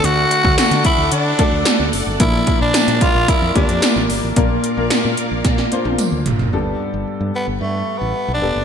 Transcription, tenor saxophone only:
0.05 F#4
0.59 F#4
0.86 E4
1.13 D4
2.21 E4
2.62 D4
3.02 F4
3.29 E4
3.57 D4
7.36 B3
7.62 A3
7.98 B3
8.34 D4

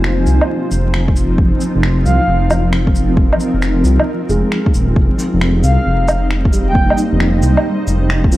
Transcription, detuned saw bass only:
Already playing: F1
0.26 C2
0.71 F1
1.38 F1
1.76 F1
2.06 C2
2.28 F1
3.17 F1
3.54 F1
3.84 C2
4.29 F1
4.74 D#1
4.96 F1
5.34 F1
5.64 C2
5.86 F1
6.75 F1
7.13 F1
7.43 C2
7.87 F1

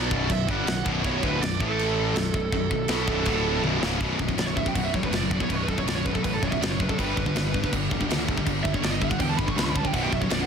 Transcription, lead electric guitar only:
Already playing: D5
0.32 E5
0.49 F#5
1.05 C#5
1.24 B4
1.41 D5
1.61 A4
4.39 D5
4.46 C#5
4.56 E5
4.67 G5
4.75 F#5
4.84 E5
4.95 C#5
5.03 B4
5.14 D5
5.43 C#5
5.52 B4 C#5
5.63 B4
5.69 A4
5.78 C#5
5.88 D5
5.95 C#5
6.06 B4
6.14 A4
6.24 B4
6.34 A4
6.43 C#5
6.51 E5
6.61 D5
6.70 C#5
6.81 B4
6.89 A4
6.98 B4
8.63 E5
8.73 C#5
8.84 D5
8.91 D#5
9.01 E5
9.10 F#5
9.20 G5
9.29 A5
9.37 B5
9.48 C#6
9.58 B5
9.64 C#6
9.69 B5
9.76 A5
9.87 G5
9.94 F#5
10.02 G5
10.13 E5
10.22 C#5
10.31 D5
10.41 F#5

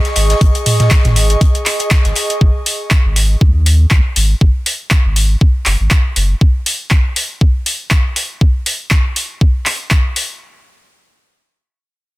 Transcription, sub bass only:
0.16 G#1
0.41 G#1
1.05 G#1
2.05 G#1
2.41 G#1
3.05 G#1
3.41 D#2
3.91 D#2
4.16 G#1
4.41 G#1
5.05 G#1
5.66 F#1
5.80 G#1
6.16 F#1

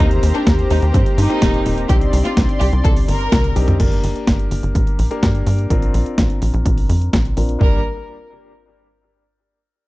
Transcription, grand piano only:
0.00 A#3 C4 D#4 G4
1.30 A#3 C4 D#4 G4
1.89 C4 D4 D#4 G4
3.56 C4 D4 D#4 G4
3.80 A#3 D4 G4 A#4
5.11 A#3 D4 G4 A#4
5.70 C4 D4 F4 A#4
7.37 C4 D4 F4 A#4
7.61 G3 A#3 D4 G4

